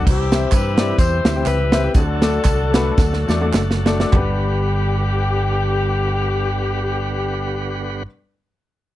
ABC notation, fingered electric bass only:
X:1
M:4/4
L:1/8
Q:"Swing" 1/4=99
K:G
V:1 name="Fingered electric bass" clef=bass
C,,2 G,,2 E,, D,, ^C,,2 | D,,2 C,,2 D,, E,, F,,,2 | G,,,8- | G,,,8 |]